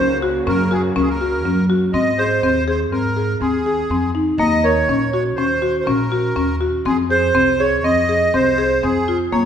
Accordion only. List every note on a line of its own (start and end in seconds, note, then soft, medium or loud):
0.00 0.18 C5 medium
0.48 0.72 A#4 medium
0.71 0.82 G#4 medium
0.95 1.02 A#4 medium
1.01 1.09 G#4 medium
1.09 1.65 A#4 medium
1.93 2.19 D#5 medium
2.18 2.64 C5 medium
2.69 2.80 C5 medium
2.92 3.38 A#4 medium
3.41 4.11 G#4 medium
4.39 4.65 D#5 medium
4.64 5.10 C#5 medium
5.12 5.23 C#5 medium
5.36 5.76 C5 medium
5.80 5.87 C5 soft
5.84 6.56 A#4 medium
6.86 6.97 G#4 medium
7.10 7.61 C5 medium
7.60 7.85 C#5 medium
7.84 8.35 D#5 medium
8.34 8.85 C5 medium
8.82 9.17 G#4 medium
9.32 9.43 C#5 medium